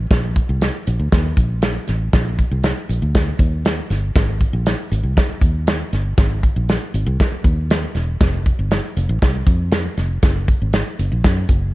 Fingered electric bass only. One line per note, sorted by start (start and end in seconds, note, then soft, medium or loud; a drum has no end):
0.11 0.40 A#1 loud
0.49 0.69 C2 medium
0.87 0.97 A#1 medium
0.99 1.09 D2 medium
1.12 1.32 D#2 medium
1.37 1.77 A#1 medium
1.89 2.08 A1 medium
2.13 2.43 A#1 loud
2.51 2.71 C2 medium
2.89 2.99 A#1 medium
3.02 3.32 D2 medium
3.39 3.79 D#2 medium
3.90 4.10 G1 medium
4.16 4.45 G#1 medium
4.53 4.73 A#1 medium
4.92 5.02 G#1 medium
5.03 5.14 C2 medium
5.29 muted fingered electric bass stroke soft
5.42 5.81 D#2 medium
5.93 6.13 G1 medium
6.18 6.48 G#1 medium
6.56 6.76 A#1 medium
6.94 7.04 G#1 medium
7.06 7.16 C2 loud
7.32 muted fingered electric bass stroke soft
7.45 7.84 D#2 medium
7.95 8.15 E1 medium
8.21 8.50 F1 loud
8.59 8.79 G1 medium
8.97 9.07 F1 medium
9.09 9.19 A1 loud
9.22 9.42 C2 medium
9.47 9.86 F2 medium
9.97 10.17 F1 medium
10.23 10.53 F#1 loud
10.62 10.81 G#1 medium
10.99 11.09 F#1 medium
11.12 11.22 A#1 medium
11.25 11.44 F#2 loud
11.49 11.74 F#1 medium